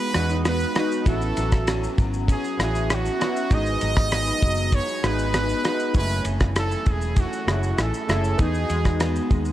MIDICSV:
0, 0, Header, 1, 6, 480
1, 0, Start_track
1, 0, Key_signature, 4, "major"
1, 0, Tempo, 610998
1, 834, Time_signature, 4, 2, 24, 8
1, 7482, End_track
2, 0, Start_track
2, 0, Title_t, "Trumpet"
2, 0, Program_c, 0, 56
2, 0, Note_on_c, 0, 71, 124
2, 333, Note_off_c, 0, 71, 0
2, 374, Note_on_c, 0, 71, 112
2, 588, Note_off_c, 0, 71, 0
2, 616, Note_on_c, 0, 71, 97
2, 828, Note_off_c, 0, 71, 0
2, 850, Note_on_c, 0, 69, 96
2, 1530, Note_off_c, 0, 69, 0
2, 1820, Note_on_c, 0, 68, 99
2, 2031, Note_off_c, 0, 68, 0
2, 2063, Note_on_c, 0, 68, 95
2, 2312, Note_on_c, 0, 66, 103
2, 2324, Note_off_c, 0, 68, 0
2, 2778, Note_on_c, 0, 75, 127
2, 2790, Note_off_c, 0, 66, 0
2, 3730, Note_on_c, 0, 73, 118
2, 3742, Note_off_c, 0, 75, 0
2, 3975, Note_on_c, 0, 71, 108
2, 3987, Note_off_c, 0, 73, 0
2, 4684, Note_off_c, 0, 71, 0
2, 4695, Note_on_c, 0, 71, 117
2, 4934, Note_off_c, 0, 71, 0
2, 5171, Note_on_c, 0, 69, 99
2, 5427, Note_on_c, 0, 68, 87
2, 5439, Note_off_c, 0, 69, 0
2, 5656, Note_on_c, 0, 66, 95
2, 5668, Note_off_c, 0, 68, 0
2, 5884, Note_off_c, 0, 66, 0
2, 5897, Note_on_c, 0, 66, 83
2, 6137, Note_on_c, 0, 69, 94
2, 6149, Note_off_c, 0, 66, 0
2, 6612, Note_on_c, 0, 68, 100
2, 6624, Note_off_c, 0, 69, 0
2, 7322, Note_off_c, 0, 68, 0
2, 7482, End_track
3, 0, Start_track
3, 0, Title_t, "Synth keys"
3, 0, Program_c, 1, 88
3, 0, Control_c, 1, 64, 127
3, 0, Note_on_c, 1, 56, 81
3, 0, Note_on_c, 1, 59, 76
3, 0, Note_on_c, 1, 63, 68
3, 0, Note_on_c, 1, 66, 92
3, 105, Note_off_c, 1, 56, 0
3, 105, Note_on_c, 1, 56, 71
3, 109, Note_off_c, 1, 59, 0
3, 109, Note_on_c, 1, 59, 64
3, 119, Note_off_c, 1, 63, 0
3, 119, Note_on_c, 1, 63, 58
3, 125, Note_off_c, 1, 66, 0
3, 125, Note_on_c, 1, 66, 72
3, 527, Note_off_c, 1, 56, 0
3, 529, Note_off_c, 1, 59, 0
3, 534, Note_off_c, 1, 63, 0
3, 537, Note_off_c, 1, 66, 0
3, 587, Note_on_c, 1, 56, 75
3, 594, Note_on_c, 1, 59, 74
3, 600, Note_on_c, 1, 63, 74
3, 608, Note_on_c, 1, 66, 92
3, 799, Note_off_c, 1, 56, 0
3, 803, Note_off_c, 1, 59, 0
3, 805, Note_off_c, 1, 63, 0
3, 809, Note_off_c, 1, 66, 0
3, 819, Note_on_c, 1, 59, 84
3, 829, Note_on_c, 1, 61, 76
3, 833, Note_on_c, 1, 64, 77
3, 843, Control_c, 1, 64, 0
3, 843, Note_on_c, 1, 66, 94
3, 968, Control_c, 1, 64, 127
3, 1662, Note_off_c, 1, 59, 0
3, 1667, Note_off_c, 1, 61, 0
3, 1669, Note_off_c, 1, 64, 0
3, 1674, Note_off_c, 1, 66, 0
3, 2022, Note_on_c, 1, 59, 68
3, 2028, Note_on_c, 1, 61, 63
3, 2038, Note_on_c, 1, 64, 64
3, 2042, Note_on_c, 1, 66, 79
3, 2445, Note_off_c, 1, 59, 0
3, 2448, Note_off_c, 1, 61, 0
3, 2453, Note_off_c, 1, 64, 0
3, 2455, Note_off_c, 1, 66, 0
3, 2506, Note_on_c, 1, 59, 77
3, 2512, Note_on_c, 1, 61, 70
3, 2521, Note_on_c, 1, 64, 75
3, 2524, Note_on_c, 1, 66, 87
3, 2718, Note_off_c, 1, 59, 0
3, 2722, Note_off_c, 1, 61, 0
3, 2726, Note_off_c, 1, 64, 0
3, 2727, Note_off_c, 1, 66, 0
3, 2751, Note_on_c, 1, 59, 82
3, 2755, Note_on_c, 1, 63, 77
3, 2764, Control_c, 1, 64, 0
3, 2766, Note_on_c, 1, 66, 75
3, 2771, Note_on_c, 1, 68, 90
3, 2891, Control_c, 1, 64, 127
3, 3587, Note_off_c, 1, 59, 0
3, 3590, Note_off_c, 1, 63, 0
3, 3595, Note_off_c, 1, 66, 0
3, 3597, Note_off_c, 1, 68, 0
3, 3947, Note_on_c, 1, 59, 70
3, 3957, Note_on_c, 1, 63, 63
3, 3964, Note_on_c, 1, 66, 65
3, 3972, Note_on_c, 1, 68, 84
3, 4367, Note_off_c, 1, 59, 0
3, 4372, Note_off_c, 1, 63, 0
3, 4376, Note_off_c, 1, 66, 0
3, 4380, Note_off_c, 1, 68, 0
3, 4431, Note_on_c, 1, 59, 81
3, 4434, Note_on_c, 1, 63, 74
3, 4441, Note_on_c, 1, 66, 75
3, 4448, Note_on_c, 1, 71, 87
3, 4641, Note_off_c, 1, 59, 0
3, 4642, Note_off_c, 1, 63, 0
3, 4645, Note_off_c, 1, 66, 0
3, 4649, Note_off_c, 1, 71, 0
3, 4664, Note_on_c, 1, 56, 68
3, 4670, Note_on_c, 1, 61, 80
3, 4678, Note_on_c, 1, 64, 76
3, 4684, Control_c, 1, 64, 0
3, 4686, Note_on_c, 1, 80, 91
3, 4714, Note_on_c, 1, 57, 88
3, 4719, Note_off_c, 1, 56, 0
3, 4819, Control_c, 1, 64, 127
3, 5507, Note_off_c, 1, 61, 0
3, 5511, Note_off_c, 1, 64, 0
3, 5515, Note_off_c, 1, 80, 0
3, 5529, Note_off_c, 1, 57, 0
3, 5866, Note_on_c, 1, 57, 67
3, 5874, Note_on_c, 1, 61, 59
3, 5881, Note_on_c, 1, 64, 57
3, 5887, Note_on_c, 1, 68, 73
3, 6287, Note_off_c, 1, 57, 0
3, 6291, Note_off_c, 1, 61, 0
3, 6294, Note_off_c, 1, 64, 0
3, 6297, Note_off_c, 1, 68, 0
3, 6347, Note_on_c, 1, 57, 81
3, 6350, Note_on_c, 1, 61, 71
3, 6355, Note_on_c, 1, 64, 76
3, 6364, Note_on_c, 1, 68, 90
3, 6559, Note_off_c, 1, 57, 0
3, 6560, Note_off_c, 1, 61, 0
3, 6563, Note_off_c, 1, 64, 0
3, 6567, Note_off_c, 1, 68, 0
3, 6580, Note_on_c, 1, 59, 83
3, 6585, Note_on_c, 1, 63, 74
3, 6591, Note_on_c, 1, 66, 80
3, 6598, Note_on_c, 1, 68, 85
3, 6603, Control_c, 1, 64, 0
3, 6761, Control_c, 1, 64, 127
3, 7422, Note_off_c, 1, 59, 0
3, 7424, Note_off_c, 1, 63, 0
3, 7427, Note_off_c, 1, 66, 0
3, 7431, Note_off_c, 1, 68, 0
3, 7482, End_track
4, 0, Start_track
4, 0, Title_t, "Clean electric guitar"
4, 0, Program_c, 2, 27
4, 0, Note_on_c, 2, 56, 74
4, 0, Note_on_c, 2, 59, 69
4, 0, Note_on_c, 2, 63, 74
4, 111, Note_off_c, 2, 63, 0
4, 117, Note_on_c, 2, 61, 67
4, 242, Note_off_c, 2, 61, 0
4, 242, Note_on_c, 2, 63, 57
4, 347, Note_off_c, 2, 59, 0
4, 357, Note_on_c, 2, 59, 68
4, 598, Note_off_c, 2, 63, 0
4, 610, Note_on_c, 2, 63, 72
4, 842, Note_off_c, 2, 63, 0
4, 845, Note_on_c, 2, 64, 74
4, 883, Note_off_c, 2, 59, 0
4, 885, Note_off_c, 2, 56, 0
4, 1075, Note_on_c, 2, 54, 64
4, 1316, Note_on_c, 2, 61, 63
4, 1554, Note_off_c, 2, 54, 0
4, 1557, Note_on_c, 2, 54, 72
4, 1783, Note_off_c, 2, 61, 0
4, 1792, Note_on_c, 2, 61, 74
4, 2026, Note_off_c, 2, 64, 0
4, 2035, Note_on_c, 2, 64, 70
4, 2266, Note_off_c, 2, 61, 0
4, 2276, Note_on_c, 2, 61, 65
4, 2514, Note_off_c, 2, 64, 0
4, 2529, Note_on_c, 2, 64, 73
4, 2761, Note_off_c, 2, 64, 0
4, 2765, Note_on_c, 2, 44, 91
4, 2767, Note_on_c, 2, 63, 64
4, 2802, Note_off_c, 2, 61, 0
4, 2992, Note_off_c, 2, 54, 0
4, 2995, Note_on_c, 2, 54, 62
4, 3236, Note_on_c, 2, 59, 64
4, 3486, Note_off_c, 2, 54, 0
4, 3489, Note_on_c, 2, 54, 75
4, 3712, Note_off_c, 2, 59, 0
4, 3722, Note_on_c, 2, 59, 72
4, 3952, Note_off_c, 2, 63, 0
4, 3962, Note_on_c, 2, 63, 70
4, 4190, Note_off_c, 2, 59, 0
4, 4199, Note_on_c, 2, 59, 63
4, 4433, Note_off_c, 2, 63, 0
4, 4442, Note_on_c, 2, 63, 80
4, 4674, Note_off_c, 2, 44, 0
4, 4677, Note_off_c, 2, 63, 0
4, 4677, Note_on_c, 2, 42, 92
4, 4686, Note_on_c, 2, 64, 78
4, 4724, Note_off_c, 2, 59, 0
4, 4920, Note_off_c, 2, 54, 0
4, 4923, Note_on_c, 2, 52, 67
4, 5159, Note_on_c, 2, 57, 61
4, 5401, Note_off_c, 2, 52, 0
4, 5404, Note_on_c, 2, 52, 64
4, 5627, Note_off_c, 2, 57, 0
4, 5636, Note_on_c, 2, 57, 63
4, 5870, Note_off_c, 2, 64, 0
4, 5873, Note_on_c, 2, 64, 71
4, 6109, Note_off_c, 2, 57, 0
4, 6118, Note_on_c, 2, 57, 65
4, 6356, Note_off_c, 2, 64, 0
4, 6360, Note_on_c, 2, 64, 75
4, 6595, Note_off_c, 2, 42, 0
4, 6598, Note_off_c, 2, 64, 0
4, 6601, Note_on_c, 2, 63, 75
4, 6644, Note_off_c, 2, 57, 0
4, 6839, Note_off_c, 2, 52, 0
4, 6842, Note_on_c, 2, 56, 64
4, 7074, Note_on_c, 2, 59, 65
4, 7299, Note_off_c, 2, 56, 0
4, 7309, Note_on_c, 2, 56, 67
4, 7482, Note_off_c, 2, 56, 0
4, 7482, Note_off_c, 2, 59, 0
4, 7482, Note_off_c, 2, 63, 0
4, 7482, End_track
5, 0, Start_track
5, 0, Title_t, "Fingered electric bass"
5, 0, Program_c, 3, 33
5, 118, Note_on_c, 3, 40, 99
5, 500, Note_off_c, 3, 40, 0
5, 834, Note_on_c, 3, 33, 110
5, 1026, Note_off_c, 3, 33, 0
5, 1081, Note_on_c, 3, 33, 100
5, 1462, Note_off_c, 3, 33, 0
5, 1562, Note_on_c, 3, 32, 101
5, 1847, Note_off_c, 3, 32, 0
5, 2035, Note_on_c, 3, 33, 106
5, 2418, Note_off_c, 3, 33, 0
5, 2762, Note_on_c, 3, 32, 115
5, 2950, Note_off_c, 3, 32, 0
5, 3004, Note_on_c, 3, 32, 99
5, 3384, Note_off_c, 3, 32, 0
5, 3477, Note_on_c, 3, 30, 99
5, 3763, Note_off_c, 3, 30, 0
5, 3957, Note_on_c, 3, 32, 108
5, 4339, Note_off_c, 3, 32, 0
5, 4673, Note_on_c, 3, 30, 124
5, 4865, Note_off_c, 3, 30, 0
5, 4908, Note_on_c, 3, 30, 95
5, 5294, Note_off_c, 3, 30, 0
5, 5393, Note_on_c, 3, 28, 98
5, 5681, Note_off_c, 3, 28, 0
5, 5870, Note_on_c, 3, 30, 106
5, 6063, Note_off_c, 3, 30, 0
5, 6110, Note_on_c, 3, 33, 97
5, 6207, Note_off_c, 3, 33, 0
5, 6354, Note_on_c, 3, 30, 99
5, 6546, Note_off_c, 3, 30, 0
5, 6592, Note_on_c, 3, 40, 123
5, 6784, Note_off_c, 3, 40, 0
5, 6834, Note_on_c, 3, 40, 91
5, 7217, Note_off_c, 3, 40, 0
5, 7312, Note_on_c, 3, 39, 84
5, 7482, Note_off_c, 3, 39, 0
5, 7482, End_track
6, 0, Start_track
6, 0, Title_t, "Drums"
6, 113, Note_on_c, 9, 51, 50
6, 113, Note_on_c, 9, 82, 61
6, 114, Note_on_c, 9, 37, 96
6, 192, Note_off_c, 9, 37, 0
6, 192, Note_off_c, 9, 51, 0
6, 192, Note_off_c, 9, 82, 0
6, 231, Note_on_c, 9, 82, 54
6, 310, Note_off_c, 9, 82, 0
6, 355, Note_on_c, 9, 51, 59
6, 355, Note_on_c, 9, 82, 75
6, 357, Note_on_c, 9, 37, 96
6, 434, Note_off_c, 9, 51, 0
6, 434, Note_off_c, 9, 82, 0
6, 435, Note_off_c, 9, 37, 0
6, 472, Note_on_c, 9, 82, 53
6, 550, Note_off_c, 9, 82, 0
6, 593, Note_on_c, 9, 51, 44
6, 593, Note_on_c, 9, 82, 57
6, 598, Note_on_c, 9, 37, 98
6, 671, Note_off_c, 9, 51, 0
6, 671, Note_off_c, 9, 82, 0
6, 676, Note_off_c, 9, 37, 0
6, 721, Note_on_c, 9, 82, 52
6, 799, Note_off_c, 9, 82, 0
6, 834, Note_on_c, 9, 36, 111
6, 834, Note_on_c, 9, 51, 64
6, 834, Note_on_c, 9, 82, 78
6, 913, Note_off_c, 9, 36, 0
6, 913, Note_off_c, 9, 51, 0
6, 913, Note_off_c, 9, 82, 0
6, 956, Note_on_c, 9, 82, 55
6, 1034, Note_off_c, 9, 82, 0
6, 1074, Note_on_c, 9, 51, 52
6, 1074, Note_on_c, 9, 82, 59
6, 1153, Note_off_c, 9, 51, 0
6, 1153, Note_off_c, 9, 82, 0
6, 1194, Note_on_c, 9, 82, 63
6, 1197, Note_on_c, 9, 36, 94
6, 1197, Note_on_c, 9, 37, 93
6, 1273, Note_off_c, 9, 82, 0
6, 1276, Note_off_c, 9, 36, 0
6, 1276, Note_off_c, 9, 37, 0
6, 1315, Note_on_c, 9, 51, 69
6, 1315, Note_on_c, 9, 82, 82
6, 1320, Note_on_c, 9, 37, 96
6, 1393, Note_off_c, 9, 51, 0
6, 1393, Note_off_c, 9, 82, 0
6, 1398, Note_off_c, 9, 37, 0
6, 1444, Note_on_c, 9, 82, 54
6, 1522, Note_off_c, 9, 82, 0
6, 1558, Note_on_c, 9, 36, 104
6, 1558, Note_on_c, 9, 51, 47
6, 1558, Note_on_c, 9, 82, 55
6, 1636, Note_off_c, 9, 36, 0
6, 1637, Note_off_c, 9, 51, 0
6, 1637, Note_off_c, 9, 82, 0
6, 1679, Note_on_c, 9, 82, 52
6, 1757, Note_off_c, 9, 82, 0
6, 1794, Note_on_c, 9, 36, 102
6, 1798, Note_on_c, 9, 51, 72
6, 1798, Note_on_c, 9, 82, 88
6, 1872, Note_off_c, 9, 36, 0
6, 1876, Note_off_c, 9, 51, 0
6, 1876, Note_off_c, 9, 82, 0
6, 1920, Note_on_c, 9, 82, 57
6, 1999, Note_off_c, 9, 82, 0
6, 2041, Note_on_c, 9, 51, 53
6, 2041, Note_on_c, 9, 82, 66
6, 2042, Note_on_c, 9, 37, 99
6, 2120, Note_off_c, 9, 37, 0
6, 2120, Note_off_c, 9, 51, 0
6, 2120, Note_off_c, 9, 82, 0
6, 2162, Note_on_c, 9, 82, 53
6, 2241, Note_off_c, 9, 82, 0
6, 2279, Note_on_c, 9, 51, 62
6, 2279, Note_on_c, 9, 82, 73
6, 2281, Note_on_c, 9, 37, 93
6, 2358, Note_off_c, 9, 51, 0
6, 2358, Note_off_c, 9, 82, 0
6, 2360, Note_off_c, 9, 37, 0
6, 2400, Note_on_c, 9, 82, 50
6, 2478, Note_off_c, 9, 82, 0
6, 2523, Note_on_c, 9, 51, 49
6, 2523, Note_on_c, 9, 82, 54
6, 2528, Note_on_c, 9, 37, 90
6, 2602, Note_off_c, 9, 51, 0
6, 2602, Note_off_c, 9, 82, 0
6, 2607, Note_off_c, 9, 37, 0
6, 2644, Note_on_c, 9, 82, 52
6, 2723, Note_off_c, 9, 82, 0
6, 2756, Note_on_c, 9, 51, 66
6, 2756, Note_on_c, 9, 82, 82
6, 2757, Note_on_c, 9, 36, 107
6, 2835, Note_off_c, 9, 36, 0
6, 2835, Note_off_c, 9, 51, 0
6, 2835, Note_off_c, 9, 82, 0
6, 2876, Note_on_c, 9, 82, 57
6, 2954, Note_off_c, 9, 82, 0
6, 2994, Note_on_c, 9, 51, 52
6, 2994, Note_on_c, 9, 82, 61
6, 3072, Note_off_c, 9, 51, 0
6, 3072, Note_off_c, 9, 82, 0
6, 3113, Note_on_c, 9, 82, 59
6, 3116, Note_on_c, 9, 37, 92
6, 3117, Note_on_c, 9, 36, 94
6, 3192, Note_off_c, 9, 82, 0
6, 3195, Note_off_c, 9, 37, 0
6, 3196, Note_off_c, 9, 36, 0
6, 3234, Note_on_c, 9, 51, 63
6, 3234, Note_on_c, 9, 82, 83
6, 3239, Note_on_c, 9, 37, 109
6, 3312, Note_off_c, 9, 51, 0
6, 3312, Note_off_c, 9, 82, 0
6, 3317, Note_off_c, 9, 37, 0
6, 3355, Note_on_c, 9, 82, 56
6, 3434, Note_off_c, 9, 82, 0
6, 3475, Note_on_c, 9, 51, 46
6, 3475, Note_on_c, 9, 82, 56
6, 3477, Note_on_c, 9, 36, 97
6, 3554, Note_off_c, 9, 51, 0
6, 3554, Note_off_c, 9, 82, 0
6, 3555, Note_off_c, 9, 36, 0
6, 3592, Note_on_c, 9, 82, 54
6, 3670, Note_off_c, 9, 82, 0
6, 3711, Note_on_c, 9, 51, 72
6, 3711, Note_on_c, 9, 82, 90
6, 3712, Note_on_c, 9, 36, 100
6, 3789, Note_off_c, 9, 51, 0
6, 3789, Note_off_c, 9, 82, 0
6, 3790, Note_off_c, 9, 36, 0
6, 3837, Note_on_c, 9, 82, 57
6, 3915, Note_off_c, 9, 82, 0
6, 3958, Note_on_c, 9, 37, 98
6, 3958, Note_on_c, 9, 51, 56
6, 3958, Note_on_c, 9, 82, 64
6, 4036, Note_off_c, 9, 51, 0
6, 4036, Note_off_c, 9, 82, 0
6, 4037, Note_off_c, 9, 37, 0
6, 4076, Note_on_c, 9, 82, 52
6, 4154, Note_off_c, 9, 82, 0
6, 4194, Note_on_c, 9, 51, 62
6, 4194, Note_on_c, 9, 82, 71
6, 4196, Note_on_c, 9, 37, 94
6, 4273, Note_off_c, 9, 51, 0
6, 4273, Note_off_c, 9, 82, 0
6, 4275, Note_off_c, 9, 37, 0
6, 4314, Note_on_c, 9, 82, 53
6, 4393, Note_off_c, 9, 82, 0
6, 4435, Note_on_c, 9, 51, 47
6, 4435, Note_on_c, 9, 82, 55
6, 4440, Note_on_c, 9, 37, 94
6, 4514, Note_off_c, 9, 51, 0
6, 4514, Note_off_c, 9, 82, 0
6, 4519, Note_off_c, 9, 37, 0
6, 4555, Note_on_c, 9, 82, 50
6, 4634, Note_off_c, 9, 82, 0
6, 4670, Note_on_c, 9, 51, 63
6, 4670, Note_on_c, 9, 82, 84
6, 4672, Note_on_c, 9, 36, 117
6, 4749, Note_off_c, 9, 51, 0
6, 4749, Note_off_c, 9, 82, 0
6, 4751, Note_off_c, 9, 36, 0
6, 4789, Note_on_c, 9, 82, 53
6, 4868, Note_off_c, 9, 82, 0
6, 4908, Note_on_c, 9, 51, 53
6, 4908, Note_on_c, 9, 82, 66
6, 4986, Note_off_c, 9, 51, 0
6, 4986, Note_off_c, 9, 82, 0
6, 5030, Note_on_c, 9, 82, 61
6, 5033, Note_on_c, 9, 37, 98
6, 5034, Note_on_c, 9, 36, 96
6, 5109, Note_off_c, 9, 82, 0
6, 5112, Note_off_c, 9, 37, 0
6, 5113, Note_off_c, 9, 36, 0
6, 5152, Note_on_c, 9, 51, 65
6, 5152, Note_on_c, 9, 82, 82
6, 5157, Note_on_c, 9, 37, 104
6, 5230, Note_off_c, 9, 51, 0
6, 5230, Note_off_c, 9, 82, 0
6, 5235, Note_off_c, 9, 37, 0
6, 5276, Note_on_c, 9, 82, 56
6, 5355, Note_off_c, 9, 82, 0
6, 5390, Note_on_c, 9, 51, 46
6, 5390, Note_on_c, 9, 82, 51
6, 5394, Note_on_c, 9, 36, 99
6, 5468, Note_off_c, 9, 51, 0
6, 5468, Note_off_c, 9, 82, 0
6, 5473, Note_off_c, 9, 36, 0
6, 5512, Note_on_c, 9, 82, 58
6, 5590, Note_off_c, 9, 82, 0
6, 5628, Note_on_c, 9, 51, 70
6, 5628, Note_on_c, 9, 82, 88
6, 5630, Note_on_c, 9, 36, 103
6, 5706, Note_off_c, 9, 51, 0
6, 5706, Note_off_c, 9, 82, 0
6, 5709, Note_off_c, 9, 36, 0
6, 5757, Note_on_c, 9, 82, 51
6, 5836, Note_off_c, 9, 82, 0
6, 5878, Note_on_c, 9, 37, 102
6, 5878, Note_on_c, 9, 51, 52
6, 5878, Note_on_c, 9, 82, 67
6, 5956, Note_off_c, 9, 51, 0
6, 5956, Note_off_c, 9, 82, 0
6, 5957, Note_off_c, 9, 37, 0
6, 5995, Note_on_c, 9, 82, 53
6, 6074, Note_off_c, 9, 82, 0
6, 6114, Note_on_c, 9, 51, 58
6, 6114, Note_on_c, 9, 82, 81
6, 6116, Note_on_c, 9, 37, 94
6, 6193, Note_off_c, 9, 51, 0
6, 6193, Note_off_c, 9, 82, 0
6, 6195, Note_off_c, 9, 37, 0
6, 6238, Note_on_c, 9, 82, 54
6, 6317, Note_off_c, 9, 82, 0
6, 6357, Note_on_c, 9, 51, 48
6, 6357, Note_on_c, 9, 82, 57
6, 6362, Note_on_c, 9, 37, 89
6, 6435, Note_off_c, 9, 51, 0
6, 6435, Note_off_c, 9, 82, 0
6, 6441, Note_off_c, 9, 37, 0
6, 6476, Note_on_c, 9, 82, 50
6, 6554, Note_off_c, 9, 82, 0
6, 6590, Note_on_c, 9, 51, 65
6, 6590, Note_on_c, 9, 82, 77
6, 6593, Note_on_c, 9, 36, 117
6, 6669, Note_off_c, 9, 51, 0
6, 6669, Note_off_c, 9, 82, 0
6, 6671, Note_off_c, 9, 36, 0
6, 6713, Note_on_c, 9, 82, 53
6, 6791, Note_off_c, 9, 82, 0
6, 6832, Note_on_c, 9, 51, 49
6, 6832, Note_on_c, 9, 82, 63
6, 6911, Note_off_c, 9, 51, 0
6, 6911, Note_off_c, 9, 82, 0
6, 6953, Note_on_c, 9, 82, 60
6, 6955, Note_on_c, 9, 36, 95
6, 6956, Note_on_c, 9, 37, 96
6, 7032, Note_off_c, 9, 82, 0
6, 7034, Note_off_c, 9, 36, 0
6, 7035, Note_off_c, 9, 37, 0
6, 7071, Note_on_c, 9, 51, 71
6, 7071, Note_on_c, 9, 82, 85
6, 7076, Note_on_c, 9, 37, 100
6, 7150, Note_off_c, 9, 51, 0
6, 7150, Note_off_c, 9, 82, 0
6, 7155, Note_off_c, 9, 37, 0
6, 7195, Note_on_c, 9, 82, 54
6, 7273, Note_off_c, 9, 82, 0
6, 7311, Note_on_c, 9, 51, 47
6, 7311, Note_on_c, 9, 82, 54
6, 7312, Note_on_c, 9, 36, 102
6, 7390, Note_off_c, 9, 51, 0
6, 7390, Note_off_c, 9, 82, 0
6, 7391, Note_off_c, 9, 36, 0
6, 7426, Note_on_c, 9, 82, 51
6, 7482, Note_off_c, 9, 82, 0
6, 7482, End_track
0, 0, End_of_file